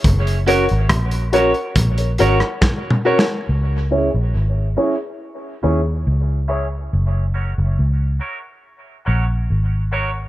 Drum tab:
HH |x--x--x--x--x--x--x--x--x--x--x-----------------|------------------------------------------------|------------------------------------------------|
SD |------------r--------------------r--o-------o---|------------------------------------------------|------------------------------------------------|
T2 |----------------------------------------o-------|------------------------------------------------|------------------------------------------------|
BD |o-----------o-----------o-----------o-----------|------------------------------------------------|------------------------------------------------|